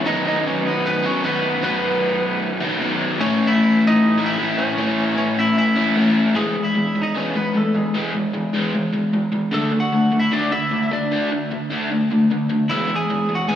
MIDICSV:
0, 0, Header, 1, 3, 480
1, 0, Start_track
1, 0, Key_signature, 4, "major"
1, 0, Tempo, 395257
1, 53, Time_signature, 4, 2, 24, 8
1, 16460, End_track
2, 0, Start_track
2, 0, Title_t, "Lead electric guitar"
2, 0, Program_c, 0, 29
2, 74, Note_on_c, 0, 63, 80
2, 82, Note_on_c, 0, 75, 97
2, 287, Note_off_c, 0, 63, 0
2, 315, Note_off_c, 0, 75, 0
2, 326, Note_on_c, 0, 63, 71
2, 337, Note_on_c, 0, 75, 92
2, 534, Note_off_c, 0, 63, 0
2, 562, Note_off_c, 0, 75, 0
2, 569, Note_on_c, 0, 61, 78
2, 577, Note_on_c, 0, 73, 78
2, 776, Note_off_c, 0, 61, 0
2, 804, Note_on_c, 0, 59, 60
2, 810, Note_off_c, 0, 73, 0
2, 810, Note_on_c, 0, 71, 80
2, 1013, Note_off_c, 0, 59, 0
2, 1038, Note_off_c, 0, 71, 0
2, 1042, Note_on_c, 0, 59, 80
2, 1055, Note_on_c, 0, 71, 97
2, 1252, Note_off_c, 0, 59, 0
2, 1281, Note_on_c, 0, 61, 74
2, 1287, Note_off_c, 0, 71, 0
2, 1287, Note_on_c, 0, 73, 85
2, 1491, Note_off_c, 0, 61, 0
2, 1509, Note_on_c, 0, 59, 67
2, 1513, Note_off_c, 0, 73, 0
2, 1518, Note_on_c, 0, 71, 75
2, 1948, Note_off_c, 0, 59, 0
2, 1977, Note_off_c, 0, 71, 0
2, 1979, Note_on_c, 0, 59, 67
2, 1991, Note_on_c, 0, 71, 84
2, 2886, Note_off_c, 0, 59, 0
2, 2892, Note_off_c, 0, 71, 0
2, 3893, Note_on_c, 0, 61, 78
2, 3900, Note_on_c, 0, 73, 98
2, 4189, Note_off_c, 0, 61, 0
2, 4218, Note_on_c, 0, 64, 76
2, 4218, Note_on_c, 0, 76, 106
2, 4224, Note_off_c, 0, 73, 0
2, 4658, Note_off_c, 0, 64, 0
2, 4698, Note_off_c, 0, 76, 0
2, 4703, Note_on_c, 0, 75, 108
2, 4710, Note_on_c, 0, 63, 74
2, 5146, Note_off_c, 0, 63, 0
2, 5169, Note_off_c, 0, 75, 0
2, 5173, Note_on_c, 0, 76, 113
2, 5181, Note_on_c, 0, 64, 76
2, 5544, Note_off_c, 0, 64, 0
2, 5559, Note_on_c, 0, 73, 99
2, 5571, Note_on_c, 0, 61, 86
2, 5583, Note_off_c, 0, 76, 0
2, 6234, Note_off_c, 0, 73, 0
2, 6240, Note_off_c, 0, 61, 0
2, 6287, Note_on_c, 0, 73, 91
2, 6293, Note_on_c, 0, 61, 74
2, 6513, Note_off_c, 0, 61, 0
2, 6534, Note_off_c, 0, 73, 0
2, 6543, Note_on_c, 0, 76, 91
2, 6555, Note_on_c, 0, 64, 72
2, 6760, Note_off_c, 0, 76, 0
2, 6762, Note_off_c, 0, 64, 0
2, 6775, Note_on_c, 0, 76, 94
2, 6783, Note_on_c, 0, 64, 77
2, 7217, Note_off_c, 0, 76, 0
2, 7221, Note_off_c, 0, 64, 0
2, 7724, Note_on_c, 0, 56, 64
2, 7729, Note_on_c, 0, 68, 81
2, 8023, Note_off_c, 0, 56, 0
2, 8052, Note_on_c, 0, 64, 67
2, 8057, Note_off_c, 0, 68, 0
2, 8070, Note_on_c, 0, 76, 83
2, 8496, Note_off_c, 0, 64, 0
2, 8520, Note_on_c, 0, 63, 72
2, 8533, Note_off_c, 0, 76, 0
2, 8538, Note_on_c, 0, 75, 82
2, 8672, Note_off_c, 0, 63, 0
2, 8697, Note_off_c, 0, 75, 0
2, 8701, Note_on_c, 0, 61, 75
2, 8719, Note_on_c, 0, 73, 103
2, 8918, Note_off_c, 0, 61, 0
2, 8936, Note_on_c, 0, 59, 68
2, 8944, Note_off_c, 0, 73, 0
2, 8948, Note_on_c, 0, 71, 84
2, 9155, Note_off_c, 0, 59, 0
2, 9178, Note_on_c, 0, 57, 57
2, 9185, Note_off_c, 0, 71, 0
2, 9193, Note_on_c, 0, 69, 66
2, 9396, Note_off_c, 0, 57, 0
2, 9428, Note_on_c, 0, 56, 55
2, 9434, Note_off_c, 0, 69, 0
2, 9434, Note_on_c, 0, 68, 78
2, 9866, Note_off_c, 0, 56, 0
2, 9901, Note_off_c, 0, 68, 0
2, 11585, Note_on_c, 0, 69, 80
2, 11596, Note_on_c, 0, 57, 66
2, 11882, Note_off_c, 0, 57, 0
2, 11901, Note_on_c, 0, 78, 105
2, 11906, Note_off_c, 0, 69, 0
2, 11911, Note_on_c, 0, 66, 73
2, 12343, Note_off_c, 0, 78, 0
2, 12349, Note_off_c, 0, 66, 0
2, 12381, Note_on_c, 0, 76, 85
2, 12391, Note_on_c, 0, 64, 71
2, 12531, Note_off_c, 0, 64, 0
2, 12541, Note_off_c, 0, 76, 0
2, 12542, Note_on_c, 0, 62, 78
2, 12547, Note_on_c, 0, 74, 86
2, 12761, Note_off_c, 0, 62, 0
2, 12777, Note_on_c, 0, 76, 98
2, 12783, Note_on_c, 0, 64, 61
2, 12785, Note_off_c, 0, 74, 0
2, 13224, Note_off_c, 0, 64, 0
2, 13268, Note_on_c, 0, 62, 64
2, 13270, Note_off_c, 0, 76, 0
2, 13274, Note_on_c, 0, 74, 84
2, 13709, Note_off_c, 0, 62, 0
2, 13709, Note_off_c, 0, 74, 0
2, 15417, Note_on_c, 0, 64, 62
2, 15433, Note_on_c, 0, 76, 88
2, 15715, Note_off_c, 0, 64, 0
2, 15732, Note_on_c, 0, 68, 71
2, 15738, Note_on_c, 0, 80, 85
2, 15754, Note_off_c, 0, 76, 0
2, 16181, Note_off_c, 0, 68, 0
2, 16211, Note_on_c, 0, 66, 68
2, 16216, Note_on_c, 0, 78, 70
2, 16233, Note_off_c, 0, 80, 0
2, 16364, Note_off_c, 0, 66, 0
2, 16364, Note_off_c, 0, 78, 0
2, 16373, Note_on_c, 0, 68, 82
2, 16379, Note_on_c, 0, 80, 109
2, 16460, Note_off_c, 0, 68, 0
2, 16460, Note_off_c, 0, 80, 0
2, 16460, End_track
3, 0, Start_track
3, 0, Title_t, "Overdriven electric guitar"
3, 0, Program_c, 1, 29
3, 51, Note_on_c, 1, 47, 81
3, 60, Note_on_c, 1, 51, 103
3, 67, Note_on_c, 1, 54, 102
3, 71, Note_on_c, 1, 59, 100
3, 84, Note_on_c, 1, 63, 102
3, 1232, Note_off_c, 1, 63, 0
3, 1237, Note_off_c, 1, 47, 0
3, 1242, Note_off_c, 1, 51, 0
3, 1245, Note_off_c, 1, 54, 0
3, 1246, Note_on_c, 1, 63, 95
3, 1247, Note_off_c, 1, 59, 0
3, 1261, Note_on_c, 1, 59, 98
3, 1267, Note_on_c, 1, 54, 86
3, 1273, Note_on_c, 1, 51, 82
3, 1277, Note_on_c, 1, 47, 73
3, 1467, Note_off_c, 1, 47, 0
3, 1475, Note_off_c, 1, 63, 0
3, 1477, Note_off_c, 1, 51, 0
3, 1482, Note_on_c, 1, 47, 76
3, 1483, Note_off_c, 1, 59, 0
3, 1485, Note_off_c, 1, 54, 0
3, 1491, Note_on_c, 1, 51, 93
3, 1500, Note_on_c, 1, 54, 78
3, 1505, Note_on_c, 1, 59, 92
3, 1512, Note_on_c, 1, 63, 89
3, 1946, Note_off_c, 1, 47, 0
3, 1953, Note_off_c, 1, 51, 0
3, 1961, Note_off_c, 1, 54, 0
3, 1961, Note_on_c, 1, 47, 97
3, 1964, Note_off_c, 1, 59, 0
3, 1968, Note_off_c, 1, 63, 0
3, 1968, Note_on_c, 1, 51, 108
3, 1978, Note_on_c, 1, 54, 107
3, 1987, Note_on_c, 1, 59, 89
3, 1989, Note_on_c, 1, 63, 102
3, 3146, Note_off_c, 1, 63, 0
3, 3150, Note_off_c, 1, 59, 0
3, 3151, Note_off_c, 1, 47, 0
3, 3155, Note_off_c, 1, 51, 0
3, 3159, Note_off_c, 1, 54, 0
3, 3161, Note_on_c, 1, 63, 101
3, 3165, Note_on_c, 1, 59, 91
3, 3173, Note_on_c, 1, 54, 91
3, 3181, Note_on_c, 1, 51, 83
3, 3187, Note_on_c, 1, 47, 79
3, 3379, Note_off_c, 1, 47, 0
3, 3391, Note_off_c, 1, 51, 0
3, 3391, Note_off_c, 1, 63, 0
3, 3393, Note_off_c, 1, 59, 0
3, 3394, Note_on_c, 1, 47, 71
3, 3397, Note_off_c, 1, 54, 0
3, 3406, Note_on_c, 1, 51, 89
3, 3412, Note_on_c, 1, 54, 78
3, 3418, Note_on_c, 1, 59, 84
3, 3428, Note_on_c, 1, 63, 85
3, 3863, Note_off_c, 1, 47, 0
3, 3868, Note_on_c, 1, 45, 98
3, 3873, Note_off_c, 1, 51, 0
3, 3877, Note_off_c, 1, 54, 0
3, 3880, Note_off_c, 1, 59, 0
3, 3881, Note_on_c, 1, 52, 90
3, 3884, Note_off_c, 1, 63, 0
3, 3885, Note_on_c, 1, 57, 97
3, 3891, Note_on_c, 1, 61, 89
3, 3897, Note_on_c, 1, 64, 101
3, 5063, Note_off_c, 1, 45, 0
3, 5064, Note_off_c, 1, 61, 0
3, 5065, Note_off_c, 1, 64, 0
3, 5070, Note_on_c, 1, 64, 93
3, 5071, Note_off_c, 1, 57, 0
3, 5078, Note_on_c, 1, 61, 80
3, 5086, Note_on_c, 1, 57, 86
3, 5087, Note_off_c, 1, 52, 0
3, 5092, Note_on_c, 1, 52, 87
3, 5101, Note_on_c, 1, 45, 81
3, 5302, Note_off_c, 1, 45, 0
3, 5309, Note_off_c, 1, 61, 0
3, 5312, Note_off_c, 1, 57, 0
3, 5317, Note_on_c, 1, 45, 86
3, 5322, Note_off_c, 1, 52, 0
3, 5327, Note_on_c, 1, 52, 86
3, 5329, Note_on_c, 1, 57, 81
3, 5338, Note_on_c, 1, 61, 80
3, 5342, Note_off_c, 1, 64, 0
3, 5346, Note_on_c, 1, 64, 93
3, 5773, Note_off_c, 1, 45, 0
3, 5787, Note_on_c, 1, 45, 91
3, 5791, Note_off_c, 1, 57, 0
3, 5793, Note_off_c, 1, 52, 0
3, 5798, Note_off_c, 1, 61, 0
3, 5798, Note_on_c, 1, 52, 106
3, 5805, Note_on_c, 1, 57, 102
3, 5815, Note_off_c, 1, 64, 0
3, 5815, Note_on_c, 1, 61, 97
3, 5820, Note_on_c, 1, 64, 108
3, 6974, Note_off_c, 1, 64, 0
3, 6981, Note_off_c, 1, 61, 0
3, 6982, Note_off_c, 1, 45, 0
3, 6987, Note_off_c, 1, 52, 0
3, 6989, Note_on_c, 1, 64, 104
3, 6991, Note_off_c, 1, 57, 0
3, 6996, Note_on_c, 1, 61, 98
3, 7009, Note_on_c, 1, 57, 79
3, 7012, Note_on_c, 1, 52, 87
3, 7019, Note_on_c, 1, 45, 79
3, 7217, Note_off_c, 1, 45, 0
3, 7223, Note_off_c, 1, 64, 0
3, 7226, Note_off_c, 1, 52, 0
3, 7227, Note_off_c, 1, 61, 0
3, 7232, Note_on_c, 1, 45, 74
3, 7233, Note_off_c, 1, 57, 0
3, 7241, Note_on_c, 1, 52, 78
3, 7247, Note_on_c, 1, 57, 86
3, 7259, Note_on_c, 1, 61, 84
3, 7259, Note_on_c, 1, 64, 93
3, 7688, Note_off_c, 1, 52, 0
3, 7703, Note_on_c, 1, 52, 84
3, 7704, Note_off_c, 1, 45, 0
3, 7707, Note_off_c, 1, 57, 0
3, 7712, Note_on_c, 1, 56, 88
3, 7716, Note_off_c, 1, 61, 0
3, 7718, Note_off_c, 1, 64, 0
3, 7721, Note_on_c, 1, 59, 98
3, 7936, Note_off_c, 1, 52, 0
3, 7945, Note_off_c, 1, 56, 0
3, 7949, Note_off_c, 1, 59, 0
3, 7951, Note_on_c, 1, 52, 70
3, 7957, Note_on_c, 1, 56, 77
3, 8174, Note_off_c, 1, 52, 0
3, 8178, Note_off_c, 1, 56, 0
3, 8190, Note_on_c, 1, 52, 60
3, 8200, Note_on_c, 1, 56, 76
3, 8414, Note_off_c, 1, 52, 0
3, 8419, Note_off_c, 1, 56, 0
3, 8443, Note_on_c, 1, 52, 63
3, 8445, Note_on_c, 1, 56, 70
3, 8657, Note_off_c, 1, 52, 0
3, 8662, Note_off_c, 1, 56, 0
3, 8672, Note_on_c, 1, 52, 77
3, 8679, Note_on_c, 1, 56, 76
3, 8684, Note_on_c, 1, 59, 88
3, 8905, Note_off_c, 1, 52, 0
3, 8908, Note_off_c, 1, 56, 0
3, 8911, Note_off_c, 1, 59, 0
3, 8929, Note_on_c, 1, 52, 69
3, 8932, Note_on_c, 1, 56, 85
3, 9144, Note_off_c, 1, 52, 0
3, 9146, Note_off_c, 1, 56, 0
3, 9161, Note_on_c, 1, 52, 65
3, 9163, Note_on_c, 1, 56, 77
3, 9380, Note_off_c, 1, 52, 0
3, 9381, Note_off_c, 1, 56, 0
3, 9403, Note_on_c, 1, 52, 66
3, 9411, Note_on_c, 1, 56, 80
3, 9621, Note_off_c, 1, 52, 0
3, 9625, Note_off_c, 1, 56, 0
3, 9645, Note_on_c, 1, 52, 97
3, 9651, Note_on_c, 1, 56, 92
3, 9655, Note_on_c, 1, 59, 89
3, 9872, Note_off_c, 1, 52, 0
3, 9875, Note_off_c, 1, 56, 0
3, 9877, Note_off_c, 1, 59, 0
3, 9893, Note_on_c, 1, 52, 74
3, 9901, Note_on_c, 1, 56, 70
3, 10107, Note_off_c, 1, 52, 0
3, 10111, Note_off_c, 1, 56, 0
3, 10122, Note_on_c, 1, 52, 67
3, 10129, Note_on_c, 1, 56, 78
3, 10341, Note_off_c, 1, 52, 0
3, 10345, Note_off_c, 1, 56, 0
3, 10361, Note_on_c, 1, 52, 77
3, 10373, Note_on_c, 1, 56, 86
3, 10376, Note_on_c, 1, 59, 78
3, 10591, Note_off_c, 1, 52, 0
3, 10597, Note_off_c, 1, 56, 0
3, 10598, Note_off_c, 1, 59, 0
3, 10617, Note_on_c, 1, 52, 68
3, 10622, Note_on_c, 1, 56, 65
3, 10829, Note_off_c, 1, 52, 0
3, 10832, Note_off_c, 1, 56, 0
3, 10843, Note_on_c, 1, 52, 68
3, 10849, Note_on_c, 1, 56, 83
3, 11063, Note_off_c, 1, 52, 0
3, 11066, Note_off_c, 1, 56, 0
3, 11092, Note_on_c, 1, 52, 70
3, 11092, Note_on_c, 1, 56, 81
3, 11304, Note_off_c, 1, 52, 0
3, 11307, Note_off_c, 1, 56, 0
3, 11318, Note_on_c, 1, 52, 63
3, 11324, Note_on_c, 1, 56, 73
3, 11540, Note_off_c, 1, 52, 0
3, 11543, Note_off_c, 1, 56, 0
3, 11552, Note_on_c, 1, 50, 85
3, 11559, Note_on_c, 1, 57, 91
3, 11570, Note_on_c, 1, 62, 91
3, 11785, Note_off_c, 1, 50, 0
3, 11787, Note_off_c, 1, 57, 0
3, 11796, Note_off_c, 1, 62, 0
3, 11799, Note_on_c, 1, 50, 69
3, 11802, Note_on_c, 1, 57, 80
3, 12021, Note_off_c, 1, 50, 0
3, 12023, Note_off_c, 1, 57, 0
3, 12050, Note_on_c, 1, 50, 72
3, 12053, Note_on_c, 1, 57, 77
3, 12267, Note_off_c, 1, 50, 0
3, 12269, Note_off_c, 1, 57, 0
3, 12288, Note_on_c, 1, 50, 60
3, 12289, Note_on_c, 1, 57, 61
3, 12506, Note_off_c, 1, 50, 0
3, 12507, Note_off_c, 1, 57, 0
3, 12523, Note_on_c, 1, 50, 79
3, 12532, Note_on_c, 1, 57, 91
3, 12538, Note_on_c, 1, 62, 85
3, 12753, Note_off_c, 1, 50, 0
3, 12758, Note_off_c, 1, 57, 0
3, 12761, Note_off_c, 1, 62, 0
3, 12769, Note_on_c, 1, 50, 76
3, 12774, Note_on_c, 1, 57, 73
3, 12987, Note_off_c, 1, 50, 0
3, 12990, Note_off_c, 1, 57, 0
3, 13005, Note_on_c, 1, 50, 77
3, 13009, Note_on_c, 1, 57, 87
3, 13225, Note_off_c, 1, 50, 0
3, 13227, Note_off_c, 1, 57, 0
3, 13248, Note_on_c, 1, 50, 73
3, 13253, Note_on_c, 1, 57, 76
3, 13467, Note_off_c, 1, 50, 0
3, 13469, Note_off_c, 1, 57, 0
3, 13496, Note_on_c, 1, 50, 91
3, 13501, Note_on_c, 1, 57, 84
3, 13509, Note_on_c, 1, 62, 99
3, 13721, Note_off_c, 1, 50, 0
3, 13723, Note_off_c, 1, 57, 0
3, 13727, Note_off_c, 1, 62, 0
3, 13746, Note_on_c, 1, 50, 64
3, 13750, Note_on_c, 1, 57, 79
3, 13956, Note_off_c, 1, 50, 0
3, 13958, Note_off_c, 1, 57, 0
3, 13971, Note_on_c, 1, 50, 65
3, 13982, Note_on_c, 1, 57, 82
3, 14189, Note_off_c, 1, 50, 0
3, 14194, Note_off_c, 1, 57, 0
3, 14209, Note_on_c, 1, 50, 80
3, 14214, Note_on_c, 1, 57, 88
3, 14220, Note_on_c, 1, 62, 86
3, 14438, Note_off_c, 1, 50, 0
3, 14440, Note_off_c, 1, 57, 0
3, 14443, Note_off_c, 1, 62, 0
3, 14463, Note_on_c, 1, 50, 56
3, 14470, Note_on_c, 1, 57, 70
3, 14675, Note_off_c, 1, 50, 0
3, 14678, Note_off_c, 1, 57, 0
3, 14703, Note_on_c, 1, 50, 70
3, 14714, Note_on_c, 1, 57, 78
3, 14915, Note_off_c, 1, 50, 0
3, 14921, Note_off_c, 1, 57, 0
3, 14944, Note_on_c, 1, 50, 69
3, 14951, Note_on_c, 1, 57, 72
3, 15156, Note_off_c, 1, 50, 0
3, 15160, Note_off_c, 1, 57, 0
3, 15171, Note_on_c, 1, 50, 67
3, 15178, Note_on_c, 1, 57, 83
3, 15390, Note_off_c, 1, 50, 0
3, 15393, Note_off_c, 1, 57, 0
3, 15413, Note_on_c, 1, 52, 73
3, 15422, Note_on_c, 1, 56, 93
3, 15428, Note_on_c, 1, 59, 91
3, 15641, Note_off_c, 1, 52, 0
3, 15645, Note_off_c, 1, 56, 0
3, 15648, Note_off_c, 1, 59, 0
3, 15656, Note_on_c, 1, 52, 70
3, 15663, Note_on_c, 1, 56, 76
3, 15872, Note_off_c, 1, 52, 0
3, 15876, Note_off_c, 1, 56, 0
3, 15907, Note_on_c, 1, 52, 69
3, 15912, Note_on_c, 1, 56, 78
3, 16118, Note_off_c, 1, 52, 0
3, 16121, Note_off_c, 1, 56, 0
3, 16139, Note_on_c, 1, 52, 65
3, 16146, Note_on_c, 1, 56, 66
3, 16354, Note_off_c, 1, 52, 0
3, 16358, Note_off_c, 1, 56, 0
3, 16375, Note_on_c, 1, 52, 70
3, 16382, Note_on_c, 1, 56, 81
3, 16389, Note_on_c, 1, 59, 94
3, 16460, Note_off_c, 1, 52, 0
3, 16460, Note_off_c, 1, 56, 0
3, 16460, Note_off_c, 1, 59, 0
3, 16460, End_track
0, 0, End_of_file